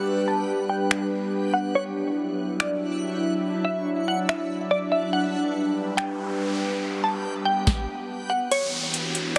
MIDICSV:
0, 0, Header, 1, 7, 480
1, 0, Start_track
1, 0, Key_signature, 2, "major"
1, 0, Tempo, 422535
1, 74, Time_signature, 4, 2, 24, 8
1, 10666, End_track
2, 0, Start_track
2, 0, Title_t, "Synth pluck"
2, 0, Program_c, 0, 84
2, 314, Note_on_c, 0, 81, 75
2, 765, Note_off_c, 0, 81, 0
2, 789, Note_on_c, 0, 79, 84
2, 1706, Note_off_c, 0, 79, 0
2, 1744, Note_on_c, 0, 78, 80
2, 1976, Note_off_c, 0, 78, 0
2, 1991, Note_on_c, 0, 73, 99
2, 2907, Note_off_c, 0, 73, 0
2, 2952, Note_on_c, 0, 74, 86
2, 3404, Note_off_c, 0, 74, 0
2, 4141, Note_on_c, 0, 76, 82
2, 4598, Note_off_c, 0, 76, 0
2, 4635, Note_on_c, 0, 78, 91
2, 4862, Note_off_c, 0, 78, 0
2, 4873, Note_on_c, 0, 76, 90
2, 5324, Note_off_c, 0, 76, 0
2, 5350, Note_on_c, 0, 74, 91
2, 5579, Note_off_c, 0, 74, 0
2, 5586, Note_on_c, 0, 76, 82
2, 5817, Note_off_c, 0, 76, 0
2, 5828, Note_on_c, 0, 78, 101
2, 6745, Note_off_c, 0, 78, 0
2, 6785, Note_on_c, 0, 79, 88
2, 7240, Note_off_c, 0, 79, 0
2, 7994, Note_on_c, 0, 81, 78
2, 8445, Note_off_c, 0, 81, 0
2, 8468, Note_on_c, 0, 79, 82
2, 9385, Note_off_c, 0, 79, 0
2, 9425, Note_on_c, 0, 78, 77
2, 9657, Note_off_c, 0, 78, 0
2, 9673, Note_on_c, 0, 73, 104
2, 10588, Note_off_c, 0, 73, 0
2, 10666, End_track
3, 0, Start_track
3, 0, Title_t, "Synth texture"
3, 0, Program_c, 1, 99
3, 0, Note_on_c, 1, 59, 79
3, 0, Note_on_c, 1, 67, 75
3, 0, Note_on_c, 1, 90, 92
3, 1956, Note_off_c, 1, 59, 0
3, 1956, Note_off_c, 1, 67, 0
3, 1993, Note_on_c, 1, 76, 75
3, 1994, Note_on_c, 1, 62, 81
3, 1994, Note_on_c, 1, 85, 73
3, 5795, Note_off_c, 1, 62, 0
3, 5795, Note_off_c, 1, 76, 0
3, 5795, Note_off_c, 1, 85, 0
3, 5834, Note_on_c, 1, 59, 79
3, 5834, Note_on_c, 1, 67, 73
3, 9630, Note_off_c, 1, 90, 0
3, 9635, Note_off_c, 1, 59, 0
3, 9635, Note_off_c, 1, 67, 0
3, 9673, Note_on_c, 1, 62, 80
3, 9674, Note_on_c, 1, 66, 75
3, 9674, Note_on_c, 1, 76, 88
3, 10666, Note_off_c, 1, 62, 0
3, 10666, Note_off_c, 1, 66, 0
3, 10666, Note_off_c, 1, 76, 0
3, 10666, End_track
4, 0, Start_track
4, 0, Title_t, "Ambient pad"
4, 0, Program_c, 2, 92
4, 0, Note_on_c, 2, 55, 86
4, 0, Note_on_c, 2, 62, 73
4, 0, Note_on_c, 2, 67, 75
4, 0, Note_on_c, 2, 71, 86
4, 1955, Note_off_c, 2, 55, 0
4, 1955, Note_off_c, 2, 67, 0
4, 1955, Note_off_c, 2, 71, 0
4, 1993, Note_on_c, 2, 54, 79
4, 1993, Note_on_c, 2, 64, 77
4, 1993, Note_on_c, 2, 76, 88
4, 5787, Note_off_c, 2, 62, 0
4, 5795, Note_off_c, 2, 54, 0
4, 5795, Note_off_c, 2, 64, 0
4, 5795, Note_off_c, 2, 76, 0
4, 5832, Note_on_c, 2, 55, 82
4, 5833, Note_on_c, 2, 62, 73
4, 5833, Note_on_c, 2, 67, 75
4, 5833, Note_on_c, 2, 71, 86
4, 8684, Note_off_c, 2, 55, 0
4, 8684, Note_off_c, 2, 62, 0
4, 8684, Note_off_c, 2, 67, 0
4, 8684, Note_off_c, 2, 71, 0
4, 9672, Note_on_c, 2, 64, 78
4, 9673, Note_on_c, 2, 52, 83
4, 9673, Note_on_c, 2, 62, 76
4, 9673, Note_on_c, 2, 66, 95
4, 10666, Note_off_c, 2, 52, 0
4, 10666, Note_off_c, 2, 62, 0
4, 10666, Note_off_c, 2, 64, 0
4, 10666, Note_off_c, 2, 66, 0
4, 10666, End_track
5, 0, Start_track
5, 0, Title_t, "Downlifter"
5, 0, Program_c, 3, 103
5, 9672, Note_on_c, 3, 60, 87
5, 10666, Note_off_c, 3, 60, 0
5, 10666, End_track
6, 0, Start_track
6, 0, Title_t, "Noise sweep"
6, 0, Program_c, 4, 103
6, 5832, Note_on_c, 4, 60, 79
6, 8713, Note_off_c, 4, 60, 0
6, 10666, End_track
7, 0, Start_track
7, 0, Title_t, "Drums"
7, 1034, Note_on_c, 9, 26, 114
7, 1148, Note_off_c, 9, 26, 0
7, 2953, Note_on_c, 9, 26, 114
7, 3067, Note_off_c, 9, 26, 0
7, 4874, Note_on_c, 9, 26, 114
7, 4988, Note_off_c, 9, 26, 0
7, 6794, Note_on_c, 9, 26, 117
7, 6907, Note_off_c, 9, 26, 0
7, 8713, Note_on_c, 9, 36, 112
7, 8714, Note_on_c, 9, 38, 88
7, 8826, Note_off_c, 9, 36, 0
7, 8827, Note_off_c, 9, 38, 0
7, 9673, Note_on_c, 9, 42, 65
7, 9787, Note_off_c, 9, 42, 0
7, 10154, Note_on_c, 9, 42, 82
7, 10268, Note_off_c, 9, 42, 0
7, 10393, Note_on_c, 9, 42, 75
7, 10507, Note_off_c, 9, 42, 0
7, 10631, Note_on_c, 9, 42, 71
7, 10666, Note_off_c, 9, 42, 0
7, 10666, End_track
0, 0, End_of_file